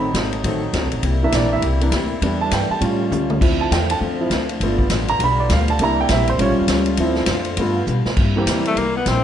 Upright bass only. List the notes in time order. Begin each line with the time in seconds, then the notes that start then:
Already playing: A1
0.14 G#1
0.44 A1
0.73 D2
0.83 C2
0.93 A1
1.03 C2
1.32 A#1
1.62 C2
1.91 D2
2.21 E2
2.51 G2
2.70 muted upright bass stroke
2.81 A2
3.11 C#2
3.41 D2
3.71 E2
4.01 F2
4.30 D2
4.60 G1
4.90 A1
5.19 B1
5.50 D2
5.79 C2
6.09 A#1
6.38 A1
6.50 G1
6.60 F1
6.68 C#2
6.98 D2
7.27 F2
7.57 G2
7.87 B2
8.05 muted upright bass stroke
8.17 G2
8.46 E2
8.76 C2
9.06 A#1